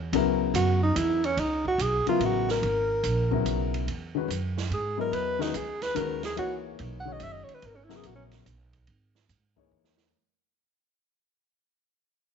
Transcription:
0.00 0.12 E2 medium
0.13 0.53 C#2 medium
0.13 1.29 C#3 medium
0.13 1.30 F#3 soft
0.13 1.30 B3 medium
0.13 1.30 E4 medium
0.13 1.31 A#4 medium
0.13 ride medium
0.54 0.95 F#2 medium
0.54 0.81 F#4 medium
0.54 hi-hat pedal soft
0.54 ride medium
0.83 0.98 D#4 medium
0.96 1.36 E2 medium
0.96 1.27 E4 medium
0.96 hi-hat pedal medium
0.96 ride medium
1.24 1.42 C#4 medium
1.24 ride soft
1.37 1.78 C#2 medium
1.37 1.67 D#4 medium
1.37 ride medium
1.65 1.83 F#4 medium
1.65 kick soft
1.78 2.05 B1 medium
1.78 2.08 G#4 medium
1.78 hi-hat pedal soft
1.78 ride medium
2.07 2.60 C#3 medium
2.07 2.60 F#3 medium
2.07 2.60 B3 medium
2.07 2.61 E4 medium
2.07 2.26 F4 medium
2.07 2.61 A#4 medium
2.07 ride soft
2.20 2.61 A1 medium
2.20 ride medium
2.25 2.50 F#4 medium
2.49 3.43 A#4 medium
2.49 snare soft
2.62 3.03 G#1 medium
2.62 ride soft
3.03 3.44 A#1 medium
3.03 hi-hat pedal medium
3.03 ride medium
3.31 3.84 C#3 medium
3.31 3.84 F#3 medium
3.31 3.85 B3 medium
3.31 3.85 E4 medium
3.31 3.85 A#4 medium
3.31 kick soft
3.45 3.86 B1 medium
3.45 hi-hat pedal soft
3.45 ride medium
3.74 ride soft
3.87 4.28 E2 medium
3.87 ride medium
4.15 4.28 D#3 medium
4.15 4.28 G#3 soft
4.15 4.28 C#4 medium
4.15 4.28 F#4 medium
4.15 4.29 B4 medium
4.28 4.69 F#2 medium
4.28 hi-hat pedal medium
4.28 ride medium
4.57 snare medium
4.70 5.11 G#2 medium
4.70 4.98 G#4 medium
4.70 ride medium
4.97 5.51 F#3 medium
4.97 5.51 B3 soft
4.97 5.51 E4 soft
4.97 5.52 A#4 soft
4.97 5.16 A#4 medium
4.97 5.52 D#5 medium
5.12 5.53 E2 medium
5.12 5.44 B4 medium
5.12 ride medium
5.39 5.52 D#3 medium
5.39 5.52 G#3 medium
5.39 5.52 C#4 medium
5.39 5.58 D#4 medium
5.39 5.53 F#4 medium
5.39 5.53 B4 medium
5.39 snare soft
5.54 5.95 C#2 medium
5.54 5.84 G#4 medium
5.54 hi-hat pedal medium
5.54 ride medium
5.82 5.98 B4 medium
5.82 snare soft
5.82 ride soft
5.95 6.36 D#2 medium
5.95 6.20 D#3 medium
5.95 6.20 G#3 soft
5.95 6.21 C#4 medium
5.95 6.21 F#4 medium
5.95 6.24 A#4 medium
5.95 6.21 B4 medium
5.95 hi-hat pedal soft
5.95 ride medium
6.23 6.37 G#4 medium
6.23 snare soft
6.23 ride soft
6.36 6.78 C#2 medium
6.36 7.01 E3 medium
6.36 7.01 A#3 medium
6.36 7.01 D#4 medium
6.36 6.55 F#4 medium
6.36 7.02 G#4 medium
6.36 7.02 C#5 medium
6.36 ride medium
6.79 7.20 B1 medium
6.79 ride soft
7.00 7.14 F#5 medium
7.05 7.59 D#3 medium
7.05 7.59 G#3 medium
7.05 7.60 C#4 soft
7.05 7.60 F#4 soft
7.05 7.60 C#5 medium
7.12 7.25 D#5 medium
7.20 7.46 F#1 medium
7.20 7.34 E5 medium
7.20 hi-hat pedal soft
7.20 ride medium
7.32 7.45 D#5 medium
7.44 7.56 C#5 medium
7.49 muted upright bass stroke soft
7.49 ride soft
7.54 7.68 B4 medium
7.62 8.03 G#1 medium
7.62 ride medium
7.66 7.77 A#4 medium
7.76 7.86 C#4 soft
7.84 7.98 E4 medium
7.89 8.42 C#3 medium
7.89 8.43 F#3 medium
7.89 8.43 B3 medium
7.89 8.43 E4 medium
7.89 8.43 A#4 medium
7.89 snare soft
7.96 8.08 G#4 medium
8.03 8.45 A#1 medium
8.03 8.15 F#4 medium
8.03 hi-hat pedal soft
8.03 ride medium
8.15 8.25 C#4 medium
8.31 snare soft
8.31 ride soft
8.46 8.86 B1 medium
8.46 hi-hat pedal soft
8.46 ride medium
8.73 kick soft
8.73 ride soft
8.87 9.28 G#1 medium
8.87 ride soft
9.15 snare soft
9.29 9.70 G#2 medium
9.29 hi-hat pedal medium
9.29 ride medium
9.56 10.09 E3 medium
9.56 10.10 A#3 medium
9.56 10.10 D#4 medium
9.56 10.10 G#4 medium
9.56 10.10 C#5 medium
9.56 kick medium
9.71 10.12 E2 medium
9.84 snare soft
9.98 snare medium

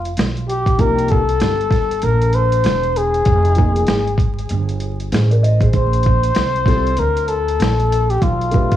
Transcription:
0.00 0.14 F1 medium
0.00 0.22 F4 medium
0.05 closed hi-hat medium
0.17 0.76 B1 medium
0.17 snare loud
0.17 closed hi-hat medium
0.37 closed hi-hat soft
0.49 0.81 G4 medium
0.49 closed hi-hat medium
0.66 kick medium
0.66 closed hi-hat soft
0.78 1.38 C2 medium
0.78 1.17 F3 medium
0.78 1.17 A#3 medium
0.78 1.18 D#4 medium
0.78 1.18 G4 medium
0.78 1.12 A#4 loud
0.78 kick medium
0.78 closed hi-hat medium
0.98 closed hi-hat soft
1.08 2.05 A4 loud
1.08 kick medium
1.08 closed hi-hat medium
1.29 closed hi-hat medium
1.40 2.00 G1 medium
1.40 snare loud
1.40 closed hi-hat medium
1.61 closed hi-hat soft
1.71 kick medium
1.71 snare soft
1.71 closed hi-hat medium
1.91 closed hi-hat medium
2.02 2.62 A#1 medium
2.02 2.37 A#4 medium
2.02 closed hi-hat medium
2.22 closed hi-hat soft
2.33 2.98 C5 medium
2.33 closed hi-hat medium
2.52 closed hi-hat medium
2.64 3.23 E1 medium
2.64 snare loud
2.64 closed hi-hat medium
2.83 closed hi-hat soft
2.96 4.20 G#4 medium
2.96 closed hi-hat medium
3.14 closed hi-hat soft
3.25 3.85 F1 medium
3.25 kick medium
3.25 closed hi-hat medium
3.45 closed hi-hat soft
3.55 3.95 F3 medium
3.55 3.96 A#3 medium
3.55 3.96 D#4 medium
3.55 3.96 G#4 medium
3.55 kick medium
3.55 closed hi-hat medium
3.76 closed hi-hat medium
3.87 4.47 G#1 medium
3.87 snare loud
3.87 closed hi-hat medium
4.08 closed hi-hat soft
4.18 kick loud
4.18 closed hi-hat medium
4.39 closed hi-hat soft
4.49 5.09 G1 medium
4.49 closed hi-hat medium
4.69 closed hi-hat medium
4.80 closed hi-hat medium
5.00 closed hi-hat medium
5.12 5.71 A1 loud
5.12 5.30 G#4 soft
5.12 5.30 C5 medium
5.12 snare loud
5.12 closed hi-hat medium
5.31 5.43 A#4 medium
5.31 5.42 D5 medium
5.31 closed hi-hat soft
5.43 5.60 C5 medium
5.43 5.61 D#5 medium
5.43 closed hi-hat medium
5.61 5.92 G#4 soft
5.61 5.91 C5 medium
5.61 kick medium
5.61 closed hi-hat soft
5.73 6.33 A#1 loud
5.73 7.01 C5 medium
5.73 kick medium
5.73 closed hi-hat medium
5.93 closed hi-hat soft
6.03 kick medium
6.03 closed hi-hat medium
6.23 closed hi-hat medium
6.35 6.95 C2 medium
6.35 snare loud
6.35 closed hi-hat medium
6.56 closed hi-hat soft
6.66 6.90 G3 medium
6.66 6.90 C4 medium
6.66 6.91 F4 medium
6.66 6.91 A4 medium
6.66 kick loud
6.66 snare soft
6.66 closed hi-hat medium
6.87 closed hi-hat soft
6.97 7.57 D2 medium
6.97 7.30 A#4 medium
6.97 closed hi-hat medium
7.17 closed hi-hat medium
7.28 8.12 A4 medium
7.28 closed hi-hat medium
7.48 closed hi-hat medium
7.60 8.18 A#1 medium
7.60 snare loud
7.60 closed hi-hat medium
7.80 closed hi-hat soft
7.92 closed hi-hat medium
8.10 8.24 G4 medium
8.10 closed hi-hat soft
8.22 8.77 B1 medium
8.22 8.77 F4 medium
8.22 kick medium
8.22 closed hi-hat medium
8.41 closed hi-hat soft
8.51 8.77 A3 medium
8.51 8.77 D4 medium
8.51 8.77 G4 medium
8.51 8.77 B4 medium
8.51 kick medium
8.51 closed hi-hat medium
8.71 kick loud
8.71 closed hi-hat medium

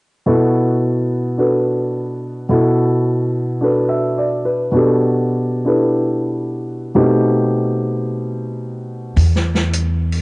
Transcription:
0.26 2.47 B2 soft
0.26 2.48 B3 soft
0.26 2.49 E4 soft
0.26 1.37 F#4 soft
0.26 1.37 A4 medium
1.38 2.49 D4 soft
1.38 2.49 F#4 soft
1.38 2.49 A4 soft
1.38 2.50 B4 soft
2.49 4.70 B2 medium
2.49 4.71 B3 soft
2.49 4.72 E4 soft
2.49 3.60 F#4 soft
2.49 3.61 A4 medium
3.61 4.72 D4 soft
3.61 4.72 F#4 soft
3.61 4.73 A4 soft
3.61 4.44 B4 soft
3.89 4.27 E5 soft
4.18 4.61 D5 soft
4.45 4.83 B4 soft
4.71 6.93 B2 soft
4.71 6.95 B3 soft
4.71 5.63 D4 soft
4.71 6.96 F#4 soft
4.71 5.65 G4 soft
4.76 5.65 A4 medium
5.65 6.95 D4 soft
5.65 6.95 E4 soft
5.65 6.94 G4 soft
5.65 6.96 A4 soft
5.65 6.96 B4 soft
6.95 9.18 B2 medium
6.95 9.18 A3 soft
6.95 9.18 C4 soft
6.95 9.18 D#4 soft
6.95 9.18 G4 medium
9.17 10.22 E2 medium
9.17 kick soft
9.17 open hi-hat soft
9.36 snare soft
9.55 snare soft
9.73 closed hi-hat medium
10.12 open hi-hat soft

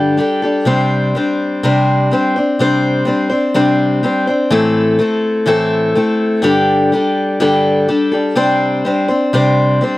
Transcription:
0.00 0.19 G2 medium
0.00 0.19 D3 medium
0.00 0.16 G3 medium
0.00 0.17 D4 medium
0.00 0.18 G4 medium
0.00 0.19 A4 loud
0.17 0.43 G3 medium
0.17 0.43 D4 medium
0.17 0.42 G4 medium
0.17 0.41 A4 medium
0.42 0.65 G3 soft
0.42 0.66 D4 soft
0.42 0.67 G4 soft
0.42 0.66 A4 soft
0.65 1.15 C3 medium
0.65 1.14 G3 medium
0.65 1.16 C4 medium
0.65 1.15 D4 medium
0.65 1.17 C5 medium
1.15 1.63 G3 medium
1.15 1.64 C4 medium
1.15 1.63 D4 medium
1.15 1.65 C5 medium
1.63 2.12 C3 medium
1.63 2.10 G3 medium
1.63 2.12 C4 medium
1.63 2.12 D4 medium
1.63 2.14 C5 medium
2.11 2.36 G3 medium
2.11 2.36 C4 medium
2.11 2.37 D4 medium
2.11 2.35 C5 medium
2.36 2.59 C4 soft
2.36 2.59 D4 soft
2.36 2.60 C5 soft
2.59 3.08 C3 medium
2.59 3.04 G3 medium
2.59 3.06 C4 medium
2.59 3.06 D4 medium
2.59 3.08 C5 loud
3.05 3.31 G3 medium
3.05 3.31 C4 medium
3.05 3.30 D4 medium
3.05 3.28 C5 medium
3.30 3.54 C4 soft
3.30 3.54 D4 medium
3.30 3.55 C5 medium
3.54 4.03 C3 medium
3.54 4.02 G3 medium
3.54 4.03 C4 medium
3.54 4.03 D4 loud
3.54 4.04 C5 medium
4.03 4.28 G3 medium
4.03 4.28 C4 medium
4.03 4.27 D4 medium
4.03 4.26 C5 medium
4.27 4.51 C4 soft
4.27 4.52 D4 soft
4.27 4.52 C5 medium
4.50 4.99 A2 medium
4.50 4.99 E3 loud
4.50 4.98 A3 medium
4.50 4.98 C4 medium
4.50 4.99 E4 medium
4.50 5.01 A4 loud
4.99 5.47 A3 medium
4.99 5.46 C4 medium
4.99 5.46 E4 medium
4.99 5.48 A4 medium
5.46 5.95 A2 medium
5.46 5.95 E3 medium
5.46 5.94 A3 medium
5.46 5.95 C4 medium
5.46 5.96 E4 medium
5.46 5.96 A4 medium
5.95 6.43 A3 medium
5.95 6.43 C4 medium
5.95 6.44 E4 medium
5.95 6.43 A4 medium
6.42 6.91 G2 medium
6.42 6.92 D3 medium
6.42 6.92 G3 medium
6.42 6.93 D4 medium
6.42 6.94 G4 medium
6.42 6.92 A4 medium
6.92 7.40 G3 medium
6.92 7.41 D4 medium
6.92 7.42 G4 medium
6.92 7.41 A4 medium
7.40 7.88 G2 medium
7.40 7.88 D3 medium
7.40 7.88 G3 medium
7.40 7.88 D4 medium
7.40 7.90 G4 medium
7.40 7.89 A4 medium
7.88 8.13 G3 medium
7.88 8.12 D4 medium
7.88 8.12 G4 medium
7.88 8.10 A4 medium
8.12 8.34 G3 soft
8.12 8.35 D4 soft
8.12 8.36 G4 soft
8.12 8.36 A4 medium
8.35 8.84 C3 medium
8.35 8.84 G3 medium
8.35 8.86 C4 medium
8.35 8.85 D4 medium
8.35 8.87 C5 medium
8.85 9.09 G3 medium
8.85 9.10 C4 medium
8.85 9.09 D4 medium
8.85 9.07 C5 medium
9.08 9.33 C4 soft
9.08 9.33 D4 medium
9.08 9.33 C5 medium
9.33 9.81 C3 medium
9.33 9.80 G3 medium
9.33 9.82 C4 medium
9.33 9.82 D4 loud
9.33 9.83 C5 medium
9.81 9.98 G3 medium
9.81 9.98 C4 medium
9.81 9.98 D4 medium
9.81 9.98 C5 medium

